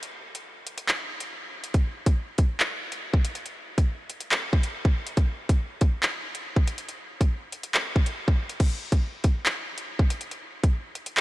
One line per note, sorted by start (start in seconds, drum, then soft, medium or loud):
0.03 closed hi-hat medium
0.35 closed hi-hat medium
0.67 closed hi-hat medium
0.78 closed hi-hat medium
0.89 clap loud
1.20 closed hi-hat medium
1.64 closed hi-hat medium
1.74 kick loud
1.74 closed hi-hat medium
2.06 kick loud
2.06 closed hi-hat medium
2.38 kick medium
2.38 closed hi-hat medium
2.60 clap loud
2.92 closed hi-hat medium
3.14 kick loud
3.25 closed hi-hat medium
3.35 closed hi-hat medium
3.46 closed hi-hat medium
3.78 kick loud
3.78 closed hi-hat medium
4.10 closed hi-hat medium
4.21 closed hi-hat medium
4.32 clap loud
4.53 kick medium
4.63 closed hi-hat medium
4.85 kick loud
5.07 closed hi-hat medium
5.17 kick loud
5.17 closed hi-hat medium
5.49 kick loud
5.49 closed hi-hat medium
5.81 kick loud
5.81 closed hi-hat medium
6.03 clap loud
6.35 closed hi-hat medium
6.56 kick loud
6.67 closed hi-hat medium
6.78 closed hi-hat medium
6.89 closed hi-hat medium
7.21 kick loud
7.21 closed hi-hat medium
7.52 closed hi-hat medium
7.63 closed hi-hat medium
7.74 clap loud
7.96 kick medium
8.06 closed hi-hat medium
8.28 kick loud
8.49 closed hi-hat medium
8.60 kick loud
8.60 closed hi-hat medium
8.60 crash loud
8.92 kick loud
8.92 closed hi-hat medium
9.24 kick medium
9.24 closed hi-hat medium
9.46 clap loud
9.78 closed hi-hat medium
9.99 kick loud
10.10 closed hi-hat medium
10.21 closed hi-hat medium
10.31 closed hi-hat medium
10.64 kick loud
10.64 closed hi-hat medium
10.95 closed hi-hat medium
11.06 closed hi-hat medium
11.17 clap loud